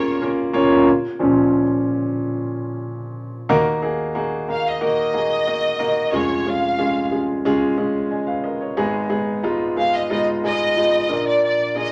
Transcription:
Already playing: grand piano A#1 A#2 A#3 C#4 F4 G#4 A#4, violin section C#5
0.21 grand piano A#3 C#4 F4 A#4
0.53 grand piano A#3 C#4 F4 C#5
1.19 grand piano A#2 F3 C#4
3.49 grand piano D#2 D#3 A#3 D#4 F#4 A#4
3.82 grand piano A#3 D#4 F#4 G#4
4.15 grand piano A#3 D#4 F#4 G#4
4.48 grand piano A#3 D#4 F#4 A#4, violin section F5
4.68 violin section D#5
4.81 grand piano A#3 D#4 F#4 A#4, violin section D#5
5.14 grand piano A#3 D#4 F#4 G#4
5.46 grand piano A#3 D#4 F#4 A#4
5.79 grand piano A#3 D#4 F#4 A#4
6.12 grand piano F1 F2 G#3 C#4 F4 G#4, violin section C#5
6.46 grand piano G#3 C#4 F4 G#4, violin section F5
6.79 grand piano G#3 C#4 F4 G#4
7.12 grand piano G#3 C#4 F4 G#4
7.45 grand piano G#3 C#4 F4 G#4
7.78 grand piano G#3 C#4 F4 G#4
8.11 grand piano D#5 G#5
8.27 grand piano B4 F5
8.44 grand piano A#4 D#5
8.61 grand piano G#4 C#5
8.77 grand piano G#1 G#2 G#3 B3 D#4 G#4
9.10 grand piano G#3 B3 D#4 G#4
9.43 grand piano G#3 B3 D#4 F4
9.76 grand piano G#3 B3 D#4 G#4, violin section F5
9.95 violin section D#5
10.10 grand piano G#3 B3 D#4 F4, violin section D#5
10.43 grand piano G#3 B3 D#4 G#4, violin section D#5
10.76 grand piano G#3 B3 D#4 F4
11.09 grand piano A#1 A#2 A#3 D4 F4 A#4
11.27 violin section D5
11.44 violin section D5
11.75 grand piano A#3 D4 F4 G#4, violin section D#5

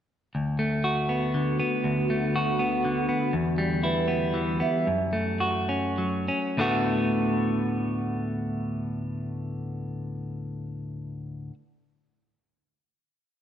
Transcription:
0.35 clean electric guitar D2, ambient pad D3 A3 B3 F#4
0.59 clean electric guitar A3
0.84 clean electric guitar F#4
1.09 clean electric guitar B3
1.34 clean electric guitar D3
1.60 clean electric guitar B3
1.84 clean electric guitar D2
2.10 clean electric guitar A3
2.36 clean electric guitar F#4
2.59 clean electric guitar B3
2.85 clean electric guitar D3
3.09 clean electric guitar B3
3.32 clean electric guitar E2, ambient pad E3 G3
3.58 clean electric guitar G3
3.83 clean electric guitar E4, vibraphone B4
4.08 clean electric guitar B3
4.34 clean electric guitar E3
4.60 clean electric guitar B3, vibraphone E5
4.87 clean electric guitar F#2
5.13 clean electric guitar A3
5.40 clean electric guitar F#4
5.69 clean electric guitar C#4
5.98 clean electric guitar F#3
6.28 clean electric guitar C#4
6.57 clean electric guitar D2 A2 D3 A3 B3 F#4

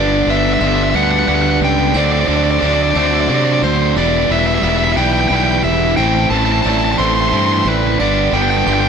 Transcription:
Already playing: fingered electric bass G1, overdriven electric guitar G2 D3 G3 B3 D4 D5, string section D4 G4 D5, vibraphone B4
0.26 fingered electric bass G1, overdriven electric guitar G2 D3 G3 B3 D4 E5
0.37 overdriven electric guitar E5
0.46 overdriven electric guitar E5
0.53 overdriven electric guitar E5
0.60 fingered electric bass G1, overdriven electric guitar G2 D3 G3 B3 D4 E5, vibraphone C6
0.68 overdriven electric guitar E5
0.76 overdriven electric guitar E5
0.83 overdriven electric guitar E5
0.90 fingered electric bass D2, vibraphone B4, overdriven electric guitar E5
0.95 overdriven electric guitar G2 D3 G3 B3 D4 F#5
1.04 overdriven electric guitar F#5
1.11 overdriven electric guitar F#5
1.19 overdriven electric guitar F#5
1.28 fingered electric bass D2, overdriven electric guitar G2 D3 G3 B3 D4 F#5
1.35 overdriven electric guitar F#5
1.42 overdriven electric guitar F#5
1.50 overdriven electric guitar F#5
1.61 fingered electric bass C#2, vibraphone D5, overdriven electric guitar G5
1.94 fingered electric bass D2, overdriven electric guitar D3 A3 C4 F#4 D5, distorted electric guitar F#3 D4, string section A4 C6, vibraphone C5
2.05 overdriven electric guitar D5
2.12 overdriven electric guitar D5
2.20 overdriven electric guitar D5
2.28 fingered electric bass D2, overdriven electric guitar D3 A3 C4 F#4 D5, distorted electric guitar F#3 D4
2.36 overdriven electric guitar D5
2.43 overdriven electric guitar D5
2.51 overdriven electric guitar D5
2.60 fingered electric bass D2, overdriven electric guitar D3 A3 C4 F#4 D5, distorted electric guitar F#3 D4, vibraphone D5
2.66 overdriven electric guitar D5
2.74 overdriven electric guitar D5
2.83 overdriven electric guitar D5
2.90 overdriven electric guitar D5
2.95 fingered electric bass D2, overdriven electric guitar D3 A3 C4 F#4 D5, distorted electric guitar F#3 D4, vibraphone C5
3.06 overdriven electric guitar D5
3.14 overdriven electric guitar D5
3.21 overdriven electric guitar D5
3.29 fingered electric bass C3, overdriven electric guitar D3 A3 C4 F#4 D5, distorted electric guitar F#3 D4
3.35 overdriven electric guitar D5
3.44 overdriven electric guitar D5
3.53 overdriven electric guitar D5
3.62 fingered electric bass D2, overdriven electric guitar C5, vibraphone D5
3.96 fingered electric bass E1, overdriven electric guitar E3 G3 B3 E4 D5, string section G4 E5 B5, vibraphone D5
4.29 fingered electric bass E1, overdriven electric guitar E3 G3 B3 E4 E5
4.39 overdriven electric guitar E5
4.47 overdriven electric guitar E5
4.55 overdriven electric guitar E5
4.63 fingered electric bass E1, overdriven electric guitar E3 G3 B3 E4 E5, vibraphone E5
4.69 overdriven electric guitar E5
4.78 overdriven electric guitar E5
4.84 overdriven electric guitar E5
4.92 overdriven electric guitar E5
4.97 fingered electric bass B1, overdriven electric guitar E3 G3 B3 E4 G5, vibraphone D5
5.05 overdriven electric guitar G5
5.13 overdriven electric guitar G5
5.21 overdriven electric guitar G5
5.28 fingered electric bass B1, overdriven electric guitar E3 G3 B3 G5
5.33 overdriven electric guitar E4 G5
5.44 overdriven electric guitar G5
5.51 overdriven electric guitar G5
5.59 overdriven electric guitar G5
5.63 fingered electric bass E1, vibraphone E5, overdriven electric guitar E5
5.97 fingered electric bass A1, overdriven electric guitar A2 E3 A3 C4 E4 G5, string section C4 E4 A4 A5, vibraphone C5
6.30 fingered electric bass A1, overdriven electric guitar A2 E3 A3 C4 E4 A5
6.38 overdriven electric guitar A5
6.45 overdriven electric guitar A5
6.52 overdriven electric guitar A5
6.62 fingered electric bass A1, overdriven electric guitar A2 E3 A3 A5, vibraphone D5
6.66 overdriven electric guitar C4 E4 A5
6.78 overdriven electric guitar A5
6.85 overdriven electric guitar A5
6.92 overdriven electric guitar A5
6.98 fingered electric bass A1, overdriven electric guitar A2 E3 A3 C4 E4 C6, vibraphone C5
7.06 overdriven electric guitar C6
7.14 overdriven electric guitar C6
7.21 overdriven electric guitar C6
7.29 fingered electric bass G2, overdriven electric guitar A2 E3 C6
7.33 overdriven electric guitar A3 C4 E4 C6
7.46 overdriven electric guitar C6
7.52 overdriven electric guitar C6
7.59 overdriven electric guitar C6
7.65 fingered electric bass A1, overdriven electric guitar B4, vibraphone D5
7.98 fingered electric bass G1, overdriven electric guitar G2 D3 G3 B3 D4 D5, string section D4 G4 D5, vibraphone B4
8.33 fingered electric bass G1, overdriven electric guitar G2 D3 G3 B3 D4 G5
8.42 overdriven electric guitar G5
8.50 overdriven electric guitar G5
8.58 overdriven electric guitar G5
8.66 fingered electric bass G1, overdriven electric guitar G2 D3 G3 B3 D4 G5, vibraphone C6
8.73 overdriven electric guitar G5
8.81 overdriven electric guitar G5

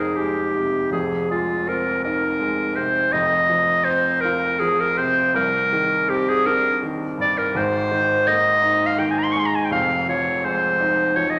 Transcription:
Already playing: grand piano F1 F2 G#3 A#3 D#4
0.00 clarinet G#4
0.16 grand piano G#3, clarinet G4
0.56 grand piano C3
0.91 grand piano F1 F2, clarinet G#4
1.31 grand piano G#3, clarinet F4
1.67 grand piano C4, clarinet A#4
2.04 grand piano D#4, clarinet A#4
2.40 grand piano G#3
2.76 grand piano C3, clarinet C5
3.13 grand piano F1 F2, clarinet D#5
3.50 grand piano F3
3.84 grand piano C4, clarinet C5
4.21 grand piano F4, clarinet A#4
4.60 grand piano F3, clarinet G#4
4.80 clarinet A#4
4.98 grand piano C3, clarinet C5
5.35 grand piano C2, clarinet A#4
5.73 grand piano D#3
6.08 grand piano C4, clarinet G4
6.29 clarinet G#4
6.46 grand piano D4, clarinet A#4
6.82 grand piano D#3
7.18 grand piano G2, clarinet D5
7.38 clarinet A#4
7.55 grand piano G#1 G#2, clarinet C5
7.91 grand piano D#3
8.28 grand piano A#3, clarinet D#5
8.62 grand piano D#4
8.86 clarinet F5
8.98 grand piano D#3, clarinet G5
9.11 clarinet G#5
9.19 clarinet A#5
9.23 clarinet C6
9.32 grand piano G#3, clarinet C#6
9.39 clarinet C6
9.46 clarinet A#5
9.55 clarinet G#5
9.65 clarinet G5
9.71 grand piano F1 F2, clarinet F5
10.09 grand piano F3, clarinet C#5
10.44 grand piano G#3, clarinet C5
10.80 grand piano D#4
11.16 grand piano F3, clarinet C#5
11.30 clarinet D#5

